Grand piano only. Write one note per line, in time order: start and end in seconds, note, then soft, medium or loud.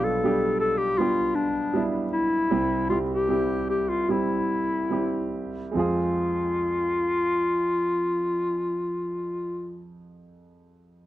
0.00 2.47 B1 soft
0.00 2.47 B2 soft
0.00 0.23 G3 medium
0.00 0.24 B3 medium
0.00 0.25 D4 medium
0.00 2.53 F4 medium
0.23 0.95 G3 soft
0.23 0.95 B3 soft
0.23 0.95 D4 soft
0.23 0.96 G4 medium
0.98 1.70 G3 soft
0.98 1.71 B3 soft
0.98 1.71 D4 soft
0.98 1.71 G4 medium
1.74 2.46 G3 soft
1.74 2.47 B3 soft
1.74 2.47 D4 soft
1.74 2.47 E4 medium
2.51 5.72 C2 soft
2.51 5.72 C3 soft
2.51 2.87 G3 medium
2.51 2.88 C4 medium
2.51 2.88 E4 medium
2.51 2.88 G4 medium
2.90 3.27 G3 soft
2.90 3.27 C4 soft
2.90 3.27 E4 soft
2.90 3.28 G4 soft
3.28 4.04 G3 soft
3.28 4.05 C4 soft
3.28 4.05 E4 soft
3.28 4.05 G4 soft
4.09 4.87 G3 soft
4.09 4.87 C4 soft
4.09 4.88 E4 soft
4.09 4.88 G4 soft
4.90 5.71 G3 soft
4.90 5.71 C4 soft
4.90 5.71 E4 soft
4.90 5.72 G4 soft
5.71 9.95 F2 soft
5.71 9.91 G#3 soft
5.71 9.94 C4 soft
5.76 9.96 F4 soft
5.76 9.99 G#4 soft